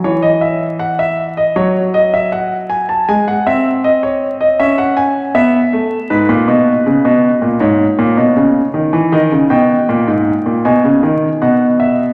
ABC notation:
X:1
M:4/4
L:1/16
Q:1/4=79
K:C#m
V:1 name="Grand piano"
c d e2 f e2 d c2 d e f2 g a | g f e2 d c2 d e f g2 e4 | B8 c8 | d2 =g6 ^g4 f2 e2 |]
V:2 name="Grand piano" clef=bass
E,8 F,8 | G,2 ^B,6 C4 =B,2 A,2 | G,, ^A,, B,,2 C, B,,2 A,, G,,2 A,, B,, C,2 D, E, | D, C, B,,2 ^A,, G,,2 A,, B,, C, D,2 B,,4 |]